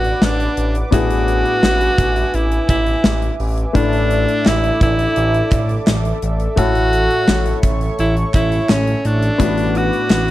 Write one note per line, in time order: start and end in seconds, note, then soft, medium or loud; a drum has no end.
0.00 0.12 A1 medium
0.00 0.92 A2 medium
0.00 0.88 B3 medium
0.00 0.89 D4 medium
0.00 0.25 F#4 loud
0.00 0.89 F#4 medium
0.00 0.90 B4 medium
0.00 3.71 B4 medium
0.00 0.90 D5 medium
0.00 0.90 F#5 medium
0.00 3.71 D6 medium
0.04 closed hi-hat soft
0.22 0.48 A1 loud
0.22 0.76 D4 medium
0.22 snare loud
0.40 closed hi-hat soft
0.57 0.83 A1 loud
0.57 closed hi-hat medium
0.75 closed hi-hat medium
0.91 1.44 A1 loud
0.91 1.94 A2 medium
0.91 3.70 B3 medium
0.91 3.70 D4 medium
0.91 3.71 E4 medium
0.91 2.36 F#4 loud
0.91 3.71 G#4 medium
0.91 9.36 E5 medium
0.91 3.72 G#5 medium
0.91 kick medium
0.91 closed hi-hat medium
1.10 closed hi-hat medium
1.28 closed hi-hat medium
1.45 closed hi-hat soft
1.63 1.89 A1 loud
1.63 snare loud
1.81 closed hi-hat soft
1.98 2.24 A1 loud
1.98 kick loud
1.98 closed hi-hat medium
2.16 closed hi-hat soft
2.34 2.59 A1 loud
2.34 2.69 E4 medium
2.34 closed hi-hat medium
2.52 closed hi-hat medium
2.69 2.94 A1 medium
2.69 3.36 E4 medium
2.69 kick loud
2.69 closed hi-hat medium
2.86 closed hi-hat soft
3.04 3.30 A1 loud
3.04 snare loud
3.22 closed hi-hat soft
3.40 3.65 A1 medium
3.40 open hi-hat medium
3.58 closed hi-hat soft
3.73 4.26 A1 medium
3.73 4.77 A2 medium
3.73 6.53 A3 medium
3.73 6.53 D4 medium
3.73 4.48 D4 loud
3.73 6.54 E4 medium
3.73 6.54 A4 medium
3.73 9.36 A4 medium
3.73 6.55 D5 medium
3.73 6.55 D6 medium
3.73 kick loud
3.73 closed hi-hat medium
3.93 closed hi-hat medium
4.11 closed hi-hat medium
4.28 closed hi-hat soft
4.46 4.71 A1 medium
4.46 4.82 E4 loud
4.46 snare loud
4.46 clap medium
4.64 closed hi-hat medium
4.81 5.07 A1 loud
4.81 5.84 E4 loud
4.81 kick loud
4.81 closed hi-hat medium
4.99 closed hi-hat soft
5.16 5.42 A1 loud
5.16 closed hi-hat medium
5.34 closed hi-hat soft
5.52 5.77 A1 loud
5.52 kick loud
5.52 clap medium
5.52 closed hi-hat medium
5.69 closed hi-hat soft
5.87 6.13 A1 loud
5.87 snare loud
5.87 clap medium
6.05 closed hi-hat soft
6.22 6.48 A1 medium
6.22 closed hi-hat medium
6.40 closed hi-hat medium
6.56 7.08 A1 loud
6.56 7.59 A2 medium
6.56 9.35 A3 medium
6.56 9.36 E4 medium
6.56 7.60 F#4 loud
6.56 9.36 A4 medium
6.56 9.36 C#5 medium
6.56 9.37 C#5 medium
6.56 9.37 C#6 medium
6.56 kick loud
6.56 closed hi-hat medium
6.75 closed hi-hat medium
6.93 closed hi-hat medium
7.11 closed hi-hat soft
7.28 7.54 A1 loud
7.28 snare loud
7.28 clap medium
7.46 closed hi-hat medium
7.63 7.89 A1 loud
7.63 kick loud
7.63 closed hi-hat medium
7.81 closed hi-hat soft
7.99 8.24 A1 loud
7.99 8.15 E4 medium
7.99 closed hi-hat medium
8.17 closed hi-hat medium
8.34 8.60 A1 medium
8.34 8.67 E4 medium
8.34 kick loud
8.34 clap medium
8.34 closed hi-hat medium
8.52 closed hi-hat soft
8.69 8.95 A1 loud
8.69 9.07 C#4 medium
8.69 snare loud
8.69 clap medium
8.87 closed hi-hat soft
9.05 9.30 A1 loud
9.05 9.78 D4 medium
9.05 closed hi-hat medium
9.22 closed hi-hat medium
9.38 9.91 A1 loud
9.38 10.31 A2 medium
9.38 10.31 B3 medium
9.38 10.31 D4 medium
9.38 10.31 F#4 medium
9.38 10.31 B4 medium
9.38 10.31 D5 medium
9.38 10.31 F#5 medium
9.38 10.31 D6 medium
9.38 kick loud
9.38 closed hi-hat medium
9.58 closed hi-hat medium
9.75 10.31 F#4 loud
9.75 closed hi-hat medium
9.93 closed hi-hat soft
10.10 10.31 A1 medium
10.10 snare loud
10.10 clap medium